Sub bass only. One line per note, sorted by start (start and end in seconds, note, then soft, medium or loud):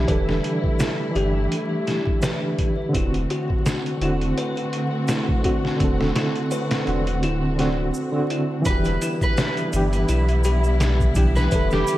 0.08 0.40 E1 medium
1.15 1.47 G1 medium
2.95 3.26 E1 loud
4.01 4.33 E1 medium
5.80 6.12 E1 loud
6.87 7.24 E1 medium
7.23 7.91 D1 loud
8.66 8.98 E1 loud
9.73 10.05 G1 medium
10.09 11.48 B1 medium
11.52 11.84 E1 medium